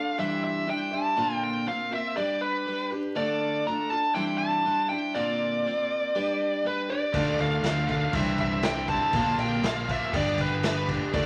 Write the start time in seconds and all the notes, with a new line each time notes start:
Already playing: D4 F4 A4 F5
0.18 C3 E3 G3 D4 E4 C5 E5
0.44 E5
0.67 G3 D4 E4 C5 G5
0.91 G3 D4 E4 C5 A5
1.16 A#2 D3 A#3 C4 F4 C5
1.44 G5
1.66 A#3 C4 F4 C5 F5
1.91 A#3 C4 F4 C5 E5
2.17 G3 D4 G4 B4 D5
2.41 B4
2.66 G3 D4 G4 B4
2.91 D4 G4 B4
3.15 D3 A3 D4 F4 A4 D5
3.66 A3 D4 F4 A4 A#5
3.90 D4 F4 A4 A5
4.14 C3 E3 G3 D4 E4 C5 G5
4.38 A5
4.65 G3 D4 E4 C5
4.89 G3 D4 E4 C5 G5
5.14 A#2 D3 A#3 C4 F4 C5 D5
5.65 A#3 C4 F4 C5
6.15 G3 D4 G4 B4
6.64 G3 D4 G4 B4
6.89 D4 G4 B4 D5
7.14 D2 D3 A3 D4 F4 A4, kick, crash
7.39 D2 F5, crash
7.63 D2 A3 D4 A4, snare, crash
7.67 F4
7.88 D3 A3 F4 A4 F5, kick, crash
7.93 D4
8.13 C2 C3 E3 G3 C4 D4 E4 C5 E5, kick, crash
8.38 E5, kick, crash
8.63 G3 D4 E4 C5 G5, snare, crash
8.88 C3 E3 G3 C4 D4 E4 C5 A5, kick, crash
9.13 A#1 A#2 D3 A#3 C4 D4 F4 C5, kick, crash
9.38 A#1 G5, crash
9.63 A#1 A#3 C4 F4 C5 F5, snare, crash
9.88 A#2 D3 A#3 D4 F4 E5, kick, crash
10.12 G1 G2 D3 G3 B3 D4 G4 B4 D5, kick, crash
10.38 B4, kick, crash
10.63 G3 D4 G4 B4, snare, crash
10.88 G2 D3 G3 B3 D4 G4 B4, kick, crash
11.13 D2 D3 A3 D4 F4 A4 D5, kick, crash